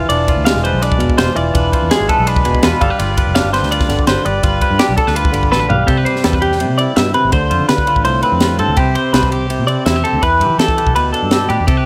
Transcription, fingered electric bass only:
0.09 E1
0.37 D2
0.55 E1
0.73 B1
1.01 E1
1.19 E1
1.36 E1
1.55 E1
1.83 E2
2.00 G#1
2.19 B1
2.46 E1
2.63 E2
2.82 G1
3.00 G1
3.27 F1
3.44 G1
3.63 D2
3.90 G1
4.08 G1
4.26 G1
4.44 G1
4.71 G2
4.89 B1
5.08 D2
5.34 G1
5.53 A1
5.71 B1
5.89 C2
6.25 E2
6.70 C3
6.97 G2
7.25 A1
7.33 D2
7.51 F2
7.60 D3
7.69 D3
7.96 A1
8.05 C2
8.32 F2
8.59 G2
8.68 D2
8.78 C2
9.13 C2
9.59 C3
9.86 E2
10.13 D2
10.23 E2
10.40 G2
10.50 E3
10.58 E3
10.87 B1
10.95 D2
11.23 G2
11.50 A2
11.60 E2
11.68 C2

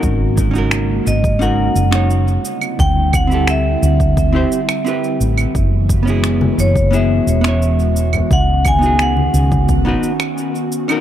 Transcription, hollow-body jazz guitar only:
Already playing: C#4 D#4 F#4 A#4
0.51 C#4 D#4
0.56 F#4 A#4
1.39 C#4 D#4 F#4 A#4
1.91 C#4 D#4 F#4 C#5
3.27 C4 E4
3.32 G4 A4
4.33 C4 E4 G4 C5
4.85 C4 E4 G4 B4
6.03 B3 C#4
6.08 E4 G#4
6.91 B3 C#4 E4 G#4
7.41 B3 C#4
7.46 E4 C#5
8.79 B3 D#4
8.84 F#4 G#4
9.85 B3 D#4 F#4 B4
10.88 C#4 D#4 F#4 A#4

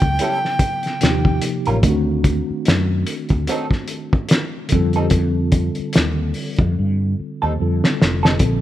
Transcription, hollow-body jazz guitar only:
0.21 G3 C#4 E4 A4
1.67 G3 C#4 F4 A#4
3.49 F#3 C4 D#4 A4
4.96 G3 C4 D#4 A4
7.42 G3 C4 D#4 A4
8.23 G3 C4 D#4 A4

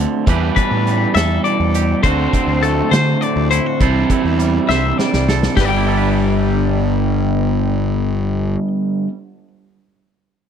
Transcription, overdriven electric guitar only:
Already playing: D3 A3 C4 F#4
0.26 E3 G3 B3 E4
2.03 D3 A3 C4 F#4
3.80 C3 E3 G3 C4 E4
5.55 G2 D3 G3 B3 D4

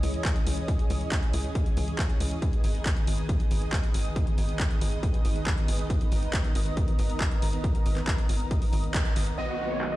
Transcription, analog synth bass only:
0.03 C#2
0.46 C#2
0.90 C#2
1.33 C#2
1.77 C#2
2.20 C#2
2.64 G#1
3.07 G#1
3.51 G#1
3.94 G#1
4.38 G#1
4.81 G#1
5.25 G#1
5.68 G#1
6.12 G#1
6.55 G#1
6.99 G#1
7.42 G#1
7.86 G#1
8.29 G#1
8.73 G#1
9.16 G#1
9.38 B1

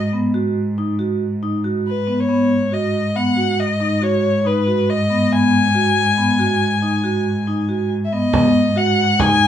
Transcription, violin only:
1.88 B4
2.20 C#5
2.73 D#5
3.16 F#5
3.60 D#5
4.04 C#5
4.47 B4
4.90 D#5
5.33 G#5
8.05 E5
8.13 D#5
8.77 F#5
9.20 G#5

